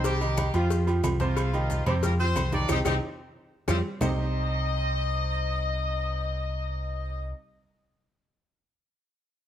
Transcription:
0.00 0.49 C2 medium
0.04 0.18 C3 medium
0.04 0.51 G3 medium
0.04 0.18 C4 medium
0.04 0.51 G4 loud
0.04 0.19 C5 medium
0.04 cowbell loud
0.04 maracas medium
0.21 0.48 D#3 medium
0.21 0.48 D#4 medium
0.21 0.49 G4 medium
0.21 high conga soft
0.21 low agogo medium
0.21 maracas soft
0.37 cowbell medium
0.37 high conga loud
0.37 low timbale medium
0.37 low agogo loud
0.37 claves medium
0.37 maracas medium
0.54 1.00 F2 medium
0.54 0.81 F3 medium
0.54 0.86 F3 medium
0.54 0.82 F4 loud
0.54 0.86 F4 medium
0.54 0.82 G4 medium
0.54 cowbell medium
0.54 low agogo medium
0.54 maracas soft
0.70 cowbell loud
0.70 high conga soft
0.70 maracas medium
0.87 1.14 F3 medium
0.87 1.14 F4 medium
0.87 1.15 G4 medium
0.87 high conga soft
0.87 low agogo medium
0.87 maracas soft
1.03 1.81 C2 medium
1.03 cowbell medium
1.03 high conga medium
1.03 low timbale medium
1.03 low agogo loud
1.03 claves medium
1.03 maracas medium
1.20 1.47 C3 loud
1.20 1.83 F3 medium
1.20 1.48 C4 medium
1.20 1.83 F4 medium
1.20 1.48 C5 loud
1.20 cowbell medium
1.20 high conga loud
1.20 maracas soft
1.37 cowbell loud
1.37 high conga soft
1.37 low agogo loud
1.37 claves medium
1.37 maracas medium
1.53 1.81 D#3 medium
1.53 1.81 D#4 medium
1.53 1.81 G4 medium
1.53 high conga soft
1.53 low agogo medium
1.53 maracas soft
1.70 cowbell medium
1.70 high conga medium
1.70 low timbale medium
1.70 maracas medium
1.86 2.33 F2 loud
1.86 2.00 C3 loud
1.86 1.95 G3 medium
1.86 2.01 C4 loud
1.86 1.94 G4 medium
1.86 2.01 C5 loud
1.86 cowbell medium
1.86 high conga soft
1.86 low conga medium
1.86 low agogo loud
1.86 claves medium
1.86 maracas soft
2.03 2.17 F3 medium
2.03 2.12 A#3 medium
2.03 2.17 F4 medium
2.03 2.17 G4 medium
2.03 2.11 A#4 medium
2.03 cowbell loud
2.03 high conga soft
2.03 low conga medium
2.03 maracas medium
2.19 2.47 F3 medium
2.19 2.51 C4 medium
2.19 2.47 F4 medium
2.19 2.47 G4 medium
2.19 2.51 C5 loud
2.19 high conga soft
2.19 maracas soft
2.36 2.67 C2 medium
2.36 cowbell medium
2.36 high conga medium
2.36 low timbale medium
2.36 low agogo loud
2.36 claves medium
2.36 maracas medium
2.52 2.66 D#3 medium
2.52 2.69 D4 medium
2.52 2.66 D#4 medium
2.52 2.66 G4 medium
2.52 2.69 D5 loud
2.52 high conga medium
2.52 low agogo medium
2.52 maracas soft
2.69 2.81 C2 medium
2.69 2.80 C4 loud
2.69 2.78 C4 loud
2.69 2.79 D#4 medium
2.69 2.78 D#4 loud
2.69 2.79 G4 loud
2.69 2.78 G4 loud
2.69 cowbell medium
2.69 high conga loud
2.69 high timbale loud
2.69 claves loud
2.69 maracas loud
2.85 2.98 C2 loud
2.85 2.96 C4 loud
2.85 2.94 C4 loud
2.85 2.96 D#4 loud
2.85 2.94 D#4 loud
2.85 2.96 G4 loud
2.85 2.94 G4 loud
2.85 cowbell loud
2.85 high conga loud
2.85 high timbale loud
2.85 claves loud
2.85 maracas loud
3.68 3.81 F2 medium
3.68 3.79 G3 loud
3.68 3.79 C4 loud
3.68 3.77 C4 loud
3.68 3.79 F4 loud
3.68 3.76 F4 medium
3.68 3.76 G4 medium
3.68 cowbell loud
3.68 high conga loud
3.68 high timbale medium
3.68 claves loud
3.68 maracas medium
4.01 7.32 C2 medium
4.01 7.31 C3 medium
4.01 7.32 G3 medium
4.01 7.31 C4 medium
4.01 7.32 D#4 medium
4.01 7.32 G4 medium
4.01 7.32 C5 loud
4.01 7.33 D#5 loud
4.01 low bongo loud
4.01 low conga loud
4.01 low timbale loud
4.01 claves loud
4.01 maracas loud

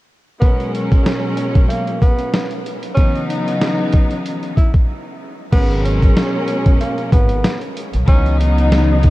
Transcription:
0.40 2.78 B2 medium
0.40 2.78 F#3 medium
0.40 2.79 G#3 medium
0.40 0.70 B3 medium
0.40 2.79 C#4 loud
0.40 2.79 A#4 medium
0.40 kick loud
0.40 closed hi-hat medium
0.60 closed hi-hat soft
0.75 1.66 C#4 medium
0.75 closed hi-hat medium
0.92 kick loud
0.92 closed hi-hat soft
1.06 snare loud
1.06 closed hi-hat medium
1.37 closed hi-hat medium
1.55 kick medium
1.55 closed hi-hat soft
1.68 1.98 A#3 medium
1.68 closed hi-hat medium
1.87 closed hi-hat soft
2.01 2.48 B3 medium
2.01 kick medium
2.01 closed hi-hat medium
2.19 closed hi-hat soft
2.34 snare loud
2.34 closed hi-hat loud
2.51 closed hi-hat soft
2.66 closed hi-hat medium
2.83 closed hi-hat medium
2.95 4.88 C#3 loud
2.95 4.89 E3 medium
2.95 4.89 F#3 loud
2.95 4.89 B3 loud
2.95 3.24 C#4 loud
2.95 4.89 D#4 loud
2.95 kick loud
2.95 closed hi-hat medium
3.15 closed hi-hat soft
3.30 4.21 D#4 medium
3.30 closed hi-hat medium
3.48 closed hi-hat medium
3.61 snare loud
3.61 closed hi-hat medium
3.92 kick loud
3.92 closed hi-hat medium
4.11 closed hi-hat soft
4.26 closed hi-hat medium
4.43 closed hi-hat soft
4.56 4.73 E4 medium
4.56 kick medium
4.56 closed hi-hat medium
4.74 kick medium
4.74 closed hi-hat soft
5.52 6.09 G#1 loud
5.52 7.89 B2 loud
5.52 7.89 F#3 medium
5.52 7.89 G#3 loud
5.52 5.81 B3 loud
5.52 7.89 C#4 loud
5.52 7.89 A#4 loud
5.52 kick loud
5.52 closed hi-hat medium
5.52 crash loud
5.71 closed hi-hat soft
5.84 6.76 C#4 medium
5.84 closed hi-hat medium
6.02 kick loud
6.02 closed hi-hat medium
6.17 snare loud
6.17 closed hi-hat medium
6.48 closed hi-hat medium
6.66 6.78 F#1 medium
6.66 kick medium
6.66 closed hi-hat medium
6.80 7.09 A#3 medium
6.80 closed hi-hat loud
6.98 closed hi-hat soft
7.12 7.40 G#1 loud
7.12 7.59 B3 medium
7.12 kick medium
7.12 closed hi-hat medium
7.29 closed hi-hat soft
7.44 snare loud
7.44 closed hi-hat loud
7.61 closed hi-hat soft
7.77 closed hi-hat medium
7.93 8.06 B1 medium
7.93 closed hi-hat medium
8.07 9.10 C#2 loud
8.07 9.10 C#3 loud
8.07 9.10 E3 loud
8.07 9.10 F#3 loud
8.07 9.10 B3 loud
8.07 8.37 C#4 loud
8.07 9.10 D#4 loud
8.07 kick loud
8.07 closed hi-hat medium
8.26 closed hi-hat soft
8.39 9.10 D#4 medium
8.39 closed hi-hat medium
8.58 closed hi-hat medium
8.72 snare loud
8.72 closed hi-hat loud
9.03 kick loud
9.03 closed hi-hat medium

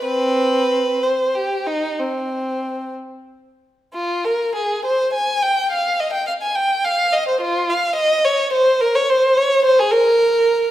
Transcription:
0.05 0.98 C4 medium
0.05 1.00 B4 medium
1.03 1.35 C5 medium
1.35 1.66 G4 medium
1.67 1.98 D#4 medium
1.99 2.93 C4 soft
3.93 4.24 F4 medium
4.25 4.55 A#4 medium
4.55 4.84 G#4 medium
4.86 5.13 C5 medium
5.13 5.41 G#5 medium
5.42 5.71 G5 medium
5.71 5.99 F5 medium
6.00 6.13 D#5 medium
6.13 6.27 G5 medium
6.27 6.33 F5 medium
6.42 6.56 G#5 medium
6.55 6.84 G5 medium
6.85 7.13 F5 medium
7.13 7.27 D#5 medium
7.29 7.42 C5 medium
7.41 7.68 F4 medium
7.69 7.97 F5 medium
7.96 8.24 D#5 medium
8.25 8.53 C#5 medium
8.53 8.80 C5 medium
8.81 8.95 A#4 medium
8.95 9.09 C#5 medium
9.10 9.37 C5 medium
9.37 9.64 C#5 medium
9.64 9.78 C5 medium
9.79 9.92 G#4 medium
9.91 10.71 A#4 medium

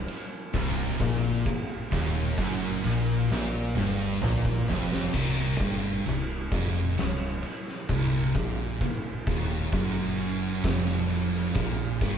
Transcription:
0.08 ride medium
0.53 0.97 C1 loud
0.53 0.99 C2 loud
0.53 kick loud
0.53 ride loud
1.00 1.43 A#1 loud
1.00 1.45 A#2 loud
1.00 kick loud
1.00 ride medium
1.46 muted fingered electric bass stroke soft
1.46 muted distorted electric guitar stroke medium
1.46 kick loud
1.46 ride loud
1.92 2.35 D#1 medium
1.92 2.37 D#2 loud
1.92 kick loud
1.92 ride medium
2.38 2.81 F#1 loud
2.38 2.83 F#2 loud
2.38 kick loud
2.38 ride loud
2.84 3.28 A#1 loud
2.84 3.29 A#2 loud
2.84 ride medium
3.31 3.74 A#1 loud
3.31 3.75 A#2 loud
3.31 snare medium
3.75 4.19 G1 loud
3.75 4.21 G2 loud
3.75 mid tom medium
4.22 4.66 A#1 medium
4.22 4.67 A#2 loud
4.22 mid tom loud
4.45 kick medium
4.68 5.12 F1 loud
4.68 5.13 F2 loud
4.68 floor tom loud
4.92 snare medium
5.14 5.57 C1 loud
5.14 5.59 C2 loud
5.14 kick loud
5.14 crash loud
5.60 6.03 G1 medium
5.60 6.05 G2 loud
5.60 kick loud
5.60 ride medium
6.06 6.50 C1 medium
6.06 6.43 C2 medium
6.06 ride loud
6.52 6.95 F1 loud
6.52 6.96 F2 loud
6.52 kick loud
6.52 ride medium
6.97 7.42 C1 medium
6.97 7.34 C2 medium
6.97 snare loud
6.97 ride loud
7.43 ride medium
7.68 snare soft
7.89 8.32 C1 medium
7.89 8.34 C2 loud
7.89 kick loud
7.89 ride loud
8.34 8.78 A#1 medium
8.34 8.80 A#2 loud
8.34 kick loud
8.34 ride medium
8.81 muted fingered electric bass stroke soft
8.81 muted distorted electric guitar stroke medium
8.81 kick loud
8.81 ride loud
9.27 9.70 D#1 medium
9.27 9.72 D#2 loud
9.27 kick loud
9.27 ride medium
9.72 10.61 F#1 loud
9.72 10.64 F#2 loud
9.72 kick loud
9.72 ride loud
10.18 ride medium
10.64 11.52 F1 medium
10.64 11.55 F2 loud
10.64 kick loud
10.64 snare loud
10.64 ride loud
11.10 ride medium
11.35 snare soft
11.55 11.99 A#1 medium
11.55 12.01 A#2 loud
11.55 kick loud
11.55 ride loud
12.01 12.18 G1 loud
12.01 12.18 G2 loud
12.01 kick loud
12.01 ride medium

